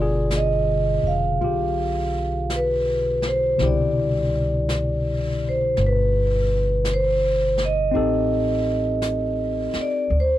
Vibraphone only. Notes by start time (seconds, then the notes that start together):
Already playing: D5
0.36 D#5
1.07 F5
2.56 B4
3.28 C5
3.65 D5
5.49 C5
5.87 B4
6.94 C5
7.65 D#5
9.81 D5
10.20 C5